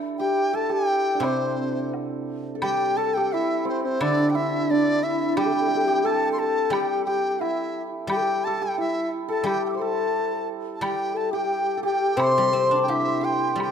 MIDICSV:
0, 0, Header, 1, 6, 480
1, 0, Start_track
1, 0, Tempo, 690449
1, 852, Time_signature, 2, 2, 24, 8
1, 2789, Tempo, 681044
1, 8549, Tempo, 702576
1, 9594, End_track
2, 0, Start_track
2, 0, Title_t, "Dizi"
2, 0, Program_c, 0, 73
2, 128, Note_on_c, 0, 79, 88
2, 383, Note_on_c, 0, 81, 97
2, 393, Note_off_c, 0, 79, 0
2, 502, Note_on_c, 0, 79, 98
2, 512, Note_off_c, 0, 81, 0
2, 862, Note_on_c, 0, 72, 82
2, 872, Note_off_c, 0, 79, 0
2, 1341, Note_off_c, 0, 72, 0
2, 1823, Note_on_c, 0, 79, 97
2, 2063, Note_on_c, 0, 81, 96
2, 2073, Note_off_c, 0, 79, 0
2, 2181, Note_on_c, 0, 79, 90
2, 2191, Note_off_c, 0, 81, 0
2, 2310, Note_on_c, 0, 76, 87
2, 2321, Note_off_c, 0, 79, 0
2, 2550, Note_off_c, 0, 76, 0
2, 2563, Note_on_c, 0, 72, 66
2, 2664, Note_off_c, 0, 72, 0
2, 2668, Note_on_c, 0, 72, 88
2, 2789, Note_on_c, 0, 74, 106
2, 2799, Note_off_c, 0, 72, 0
2, 2990, Note_on_c, 0, 79, 73
2, 3000, Note_off_c, 0, 74, 0
2, 3029, Note_on_c, 0, 76, 94
2, 3040, Note_off_c, 0, 79, 0
2, 3276, Note_on_c, 0, 74, 101
2, 3286, Note_off_c, 0, 76, 0
2, 3508, Note_on_c, 0, 76, 92
2, 3518, Note_off_c, 0, 74, 0
2, 3746, Note_off_c, 0, 76, 0
2, 3752, Note_on_c, 0, 79, 105
2, 4235, Note_on_c, 0, 81, 96
2, 4246, Note_off_c, 0, 79, 0
2, 4414, Note_off_c, 0, 81, 0
2, 4418, Note_on_c, 0, 84, 66
2, 4468, Note_on_c, 0, 81, 89
2, 4478, Note_off_c, 0, 84, 0
2, 4691, Note_on_c, 0, 79, 88
2, 4702, Note_off_c, 0, 81, 0
2, 4926, Note_off_c, 0, 79, 0
2, 4931, Note_on_c, 0, 79, 85
2, 5111, Note_off_c, 0, 79, 0
2, 5111, Note_on_c, 0, 79, 60
2, 5177, Note_on_c, 0, 76, 82
2, 5188, Note_off_c, 0, 79, 0
2, 5474, Note_off_c, 0, 76, 0
2, 5683, Note_on_c, 0, 79, 101
2, 5912, Note_on_c, 0, 81, 99
2, 5923, Note_off_c, 0, 79, 0
2, 6042, Note_on_c, 0, 79, 91
2, 6053, Note_off_c, 0, 81, 0
2, 6157, Note_off_c, 0, 79, 0
2, 6163, Note_on_c, 0, 76, 89
2, 6381, Note_off_c, 0, 76, 0
2, 6514, Note_on_c, 0, 81, 86
2, 6621, Note_on_c, 0, 79, 100
2, 6631, Note_off_c, 0, 81, 0
2, 6764, Note_off_c, 0, 79, 0
2, 6768, Note_on_c, 0, 79, 38
2, 6788, Note_off_c, 0, 79, 0
2, 6793, Note_on_c, 0, 88, 38
2, 6807, Note_off_c, 0, 88, 0
2, 6810, Note_on_c, 0, 86, 47
2, 6835, Note_off_c, 0, 86, 0
2, 6840, Note_on_c, 0, 84, 50
2, 6881, Note_on_c, 0, 81, 91
2, 6892, Note_off_c, 0, 84, 0
2, 7354, Note_off_c, 0, 81, 0
2, 7538, Note_on_c, 0, 81, 62
2, 7592, Note_on_c, 0, 79, 91
2, 7603, Note_off_c, 0, 81, 0
2, 7832, Note_on_c, 0, 81, 86
2, 7842, Note_off_c, 0, 79, 0
2, 7941, Note_off_c, 0, 81, 0
2, 7945, Note_on_c, 0, 79, 91
2, 8281, Note_off_c, 0, 79, 0
2, 8315, Note_on_c, 0, 79, 91
2, 8563, Note_on_c, 0, 84, 102
2, 8573, Note_off_c, 0, 79, 0
2, 8984, Note_off_c, 0, 84, 0
2, 8989, Note_on_c, 0, 79, 64
2, 9037, Note_on_c, 0, 76, 97
2, 9047, Note_off_c, 0, 79, 0
2, 9273, Note_on_c, 0, 79, 91
2, 9284, Note_off_c, 0, 76, 0
2, 9513, Note_off_c, 0, 79, 0
2, 9532, Note_on_c, 0, 79, 81
2, 9594, Note_off_c, 0, 79, 0
2, 9594, End_track
3, 0, Start_track
3, 0, Title_t, "Hammered dulcimer"
3, 0, Program_c, 1, 15
3, 0, Note_on_c, 1, 62, 58
3, 0, Note_on_c, 1, 64, 67
3, 0, Note_on_c, 1, 67, 68
3, 0, Note_on_c, 1, 69, 72
3, 133, Note_off_c, 1, 67, 0
3, 136, Note_on_c, 1, 67, 77
3, 368, Note_off_c, 1, 69, 0
3, 371, Note_on_c, 1, 69, 84
3, 480, Note_off_c, 1, 67, 0
3, 483, Note_on_c, 1, 67, 80
3, 794, Note_off_c, 1, 62, 0
3, 797, Note_on_c, 1, 62, 49
3, 847, Note_on_c, 1, 60, 60
3, 1617, Note_off_c, 1, 64, 0
3, 1770, Note_off_c, 1, 69, 0
3, 1773, Note_on_c, 1, 69, 55
3, 1824, Note_off_c, 1, 67, 0
3, 1827, Note_on_c, 1, 67, 74
3, 2066, Note_off_c, 1, 69, 0
3, 2069, Note_on_c, 1, 69, 79
3, 2203, Note_off_c, 1, 67, 0
3, 2206, Note_on_c, 1, 67, 83
3, 2323, Note_on_c, 1, 64, 78
3, 2535, Note_off_c, 1, 60, 0
3, 2538, Note_on_c, 1, 60, 77
3, 2791, Note_off_c, 1, 62, 0
3, 2793, Note_on_c, 1, 62, 78
3, 3023, Note_off_c, 1, 64, 0
3, 3025, Note_on_c, 1, 64, 77
3, 3275, Note_off_c, 1, 62, 0
3, 3277, Note_on_c, 1, 62, 77
3, 3743, Note_off_c, 1, 67, 0
3, 3746, Note_on_c, 1, 67, 82
3, 3789, Note_off_c, 1, 67, 0
3, 3791, Note_on_c, 1, 67, 64
3, 3854, Note_off_c, 1, 67, 0
3, 3857, Note_on_c, 1, 67, 72
3, 3894, Note_off_c, 1, 67, 0
3, 3897, Note_on_c, 1, 67, 64
3, 3961, Note_off_c, 1, 67, 0
3, 3964, Note_on_c, 1, 67, 72
3, 4008, Note_off_c, 1, 67, 0
3, 4010, Note_on_c, 1, 67, 70
3, 4101, Note_off_c, 1, 67, 0
3, 4104, Note_on_c, 1, 67, 95
3, 4118, Note_off_c, 1, 69, 0
3, 4223, Note_on_c, 1, 69, 99
3, 4691, Note_off_c, 1, 67, 0
3, 4694, Note_on_c, 1, 67, 76
3, 4940, Note_off_c, 1, 67, 0
3, 4943, Note_on_c, 1, 67, 80
3, 5181, Note_off_c, 1, 64, 0
3, 5184, Note_on_c, 1, 64, 70
3, 5354, Note_off_c, 1, 60, 0
3, 5680, Note_off_c, 1, 67, 0
3, 5683, Note_on_c, 1, 67, 77
3, 5904, Note_off_c, 1, 62, 0
3, 5927, Note_off_c, 1, 69, 0
3, 5930, Note_on_c, 1, 69, 84
3, 6031, Note_off_c, 1, 67, 0
3, 6034, Note_on_c, 1, 67, 72
3, 6147, Note_off_c, 1, 64, 0
3, 6149, Note_on_c, 1, 64, 68
3, 6503, Note_off_c, 1, 69, 0
3, 6506, Note_on_c, 1, 69, 76
3, 6624, Note_off_c, 1, 67, 0
3, 6627, Note_on_c, 1, 67, 82
3, 6830, Note_on_c, 1, 72, 52
3, 6875, Note_off_c, 1, 69, 0
3, 6878, Note_on_c, 1, 69, 68
3, 7588, Note_off_c, 1, 67, 0
3, 7590, Note_on_c, 1, 67, 74
3, 7944, Note_off_c, 1, 67, 0
3, 7947, Note_on_c, 1, 67, 80
3, 8256, Note_off_c, 1, 69, 0
3, 8259, Note_on_c, 1, 69, 64
3, 8296, Note_off_c, 1, 67, 0
3, 8299, Note_on_c, 1, 67, 86
3, 8541, Note_off_c, 1, 72, 0
3, 8544, Note_on_c, 1, 72, 82
3, 8585, Note_off_c, 1, 72, 0
3, 8588, Note_on_c, 1, 72, 60
3, 8596, Note_off_c, 1, 64, 0
3, 8640, Note_off_c, 1, 72, 0
3, 8643, Note_on_c, 1, 72, 65
3, 8686, Note_off_c, 1, 72, 0
3, 8689, Note_on_c, 1, 72, 61
3, 8746, Note_off_c, 1, 72, 0
3, 8749, Note_on_c, 1, 72, 71
3, 8789, Note_off_c, 1, 72, 0
3, 8792, Note_on_c, 1, 72, 52
3, 8851, Note_off_c, 1, 72, 0
3, 8854, Note_on_c, 1, 72, 58
3, 8896, Note_off_c, 1, 72, 0
3, 8899, Note_on_c, 1, 72, 62
3, 8951, Note_off_c, 1, 72, 0
3, 8954, Note_on_c, 1, 72, 63
3, 9004, Note_off_c, 1, 72, 0
3, 9007, Note_on_c, 1, 72, 56
3, 9045, Note_off_c, 1, 72, 0
3, 9048, Note_on_c, 1, 72, 72
3, 9114, Note_off_c, 1, 72, 0
3, 9117, Note_on_c, 1, 72, 61
3, 9156, Note_off_c, 1, 72, 0
3, 9159, Note_on_c, 1, 72, 71
3, 9249, Note_off_c, 1, 67, 0
3, 9252, Note_on_c, 1, 67, 78
3, 9503, Note_off_c, 1, 67, 0
3, 9506, Note_on_c, 1, 67, 64
3, 9594, Note_off_c, 1, 67, 0
3, 9594, Note_off_c, 1, 69, 0
3, 9594, Note_off_c, 1, 72, 0
3, 9594, End_track
4, 0, Start_track
4, 0, Title_t, "Xiao"
4, 0, Program_c, 2, 77
4, 142, Note_on_c, 2, 67, 90
4, 362, Note_off_c, 2, 67, 0
4, 380, Note_on_c, 2, 69, 81
4, 504, Note_on_c, 2, 67, 84
4, 514, Note_off_c, 2, 69, 0
4, 856, Note_on_c, 2, 60, 65
4, 866, Note_off_c, 2, 67, 0
4, 1338, Note_off_c, 2, 60, 0
4, 1775, Note_on_c, 2, 69, 54
4, 1831, Note_on_c, 2, 67, 86
4, 1841, Note_off_c, 2, 69, 0
4, 2065, Note_on_c, 2, 69, 87
4, 2076, Note_off_c, 2, 67, 0
4, 2203, Note_on_c, 2, 67, 89
4, 2214, Note_off_c, 2, 69, 0
4, 2324, Note_on_c, 2, 64, 82
4, 2334, Note_off_c, 2, 67, 0
4, 2678, Note_on_c, 2, 60, 75
4, 2688, Note_off_c, 2, 64, 0
4, 2796, Note_on_c, 2, 62, 75
4, 2807, Note_off_c, 2, 60, 0
4, 3040, Note_on_c, 2, 64, 85
4, 3051, Note_off_c, 2, 62, 0
4, 3275, Note_on_c, 2, 62, 82
4, 3286, Note_off_c, 2, 64, 0
4, 3513, Note_on_c, 2, 64, 88
4, 3524, Note_off_c, 2, 62, 0
4, 3747, Note_on_c, 2, 67, 76
4, 3757, Note_off_c, 2, 64, 0
4, 3810, Note_on_c, 2, 69, 74
4, 3820, Note_off_c, 2, 67, 0
4, 3858, Note_on_c, 2, 67, 67
4, 3869, Note_off_c, 2, 69, 0
4, 3916, Note_on_c, 2, 69, 77
4, 3927, Note_off_c, 2, 67, 0
4, 3973, Note_on_c, 2, 67, 74
4, 3984, Note_off_c, 2, 69, 0
4, 4025, Note_on_c, 2, 69, 82
4, 4036, Note_off_c, 2, 67, 0
4, 4084, Note_on_c, 2, 67, 93
4, 4094, Note_off_c, 2, 69, 0
4, 4217, Note_on_c, 2, 69, 82
4, 4227, Note_off_c, 2, 67, 0
4, 4455, Note_off_c, 2, 69, 0
4, 4470, Note_on_c, 2, 69, 91
4, 4698, Note_on_c, 2, 67, 81
4, 4709, Note_off_c, 2, 69, 0
4, 4937, Note_off_c, 2, 67, 0
4, 4942, Note_on_c, 2, 67, 84
4, 5166, Note_off_c, 2, 67, 0
4, 5180, Note_on_c, 2, 64, 71
4, 5521, Note_off_c, 2, 64, 0
4, 5662, Note_on_c, 2, 67, 74
4, 5716, Note_on_c, 2, 69, 65
4, 5726, Note_off_c, 2, 67, 0
4, 5756, Note_on_c, 2, 67, 70
4, 5766, Note_off_c, 2, 69, 0
4, 5957, Note_off_c, 2, 67, 0
4, 6147, Note_on_c, 2, 64, 74
4, 6372, Note_off_c, 2, 64, 0
4, 6506, Note_on_c, 2, 69, 80
4, 6632, Note_on_c, 2, 67, 75
4, 6642, Note_off_c, 2, 69, 0
4, 6865, Note_on_c, 2, 69, 88
4, 6875, Note_off_c, 2, 67, 0
4, 7346, Note_off_c, 2, 69, 0
4, 7587, Note_on_c, 2, 67, 70
4, 7815, Note_on_c, 2, 69, 81
4, 7825, Note_off_c, 2, 67, 0
4, 7934, Note_on_c, 2, 67, 77
4, 7945, Note_off_c, 2, 69, 0
4, 8287, Note_off_c, 2, 67, 0
4, 8291, Note_on_c, 2, 67, 82
4, 8537, Note_on_c, 2, 72, 83
4, 8547, Note_off_c, 2, 67, 0
4, 9020, Note_off_c, 2, 72, 0
4, 9026, Note_on_c, 2, 64, 81
4, 9503, Note_on_c, 2, 67, 68
4, 9513, Note_off_c, 2, 64, 0
4, 9594, Note_off_c, 2, 67, 0
4, 9594, End_track
5, 0, Start_track
5, 0, Title_t, "Guzheng"
5, 0, Program_c, 3, 107
5, 0, Note_on_c, 3, 52, 61
5, 370, Note_off_c, 3, 52, 0
5, 834, Note_on_c, 3, 48, 65
5, 1821, Note_on_c, 3, 55, 61
5, 2298, Note_off_c, 3, 48, 0
5, 2784, Note_on_c, 3, 50, 67
5, 3270, Note_off_c, 3, 55, 0
5, 3745, Note_on_c, 3, 55, 68
5, 4217, Note_off_c, 3, 50, 0
5, 4676, Note_off_c, 3, 55, 0
5, 4685, Note_on_c, 3, 55, 65
5, 5643, Note_off_c, 3, 55, 0
5, 5652, Note_on_c, 3, 55, 65
5, 6603, Note_off_c, 3, 55, 0
5, 6612, Note_on_c, 3, 55, 67
5, 7573, Note_off_c, 3, 55, 0
5, 7582, Note_on_c, 3, 55, 69
5, 8537, Note_on_c, 3, 48, 69
5, 8673, Note_off_c, 3, 55, 0
5, 8681, Note_on_c, 3, 55, 53
5, 8785, Note_on_c, 3, 60, 57
5, 8907, Note_on_c, 3, 62, 53
5, 9026, Note_on_c, 3, 67, 51
5, 9477, Note_off_c, 3, 55, 0
5, 9486, Note_on_c, 3, 55, 55
5, 9594, Note_off_c, 3, 48, 0
5, 9594, Note_off_c, 3, 55, 0
5, 9594, Note_off_c, 3, 60, 0
5, 9594, Note_off_c, 3, 62, 0
5, 9594, Note_off_c, 3, 67, 0
5, 9594, End_track
6, 0, Start_track
6, 0, Title_t, "Drums"
6, 854, Note_on_c, 9, 76, 53
6, 923, Note_off_c, 9, 76, 0
6, 1346, Note_on_c, 9, 77, 40
6, 1415, Note_off_c, 9, 77, 0
6, 1820, Note_on_c, 9, 76, 71
6, 1890, Note_off_c, 9, 76, 0
6, 2787, Note_on_c, 9, 76, 71
6, 2858, Note_off_c, 9, 76, 0
6, 3746, Note_on_c, 9, 76, 64
6, 3817, Note_off_c, 9, 76, 0
6, 4704, Note_on_c, 9, 76, 74
6, 4775, Note_off_c, 9, 76, 0
6, 5187, Note_on_c, 9, 77, 50
6, 5257, Note_off_c, 9, 77, 0
6, 5668, Note_on_c, 9, 76, 73
6, 5738, Note_off_c, 9, 76, 0
6, 6634, Note_on_c, 9, 76, 60
6, 6704, Note_off_c, 9, 76, 0
6, 7590, Note_on_c, 9, 76, 70
6, 7660, Note_off_c, 9, 76, 0
6, 8557, Note_on_c, 9, 76, 68
6, 8626, Note_off_c, 9, 76, 0
6, 9035, Note_on_c, 9, 77, 47
6, 9103, Note_off_c, 9, 77, 0
6, 9517, Note_on_c, 9, 76, 59
6, 9585, Note_off_c, 9, 76, 0
6, 9594, End_track
0, 0, End_of_file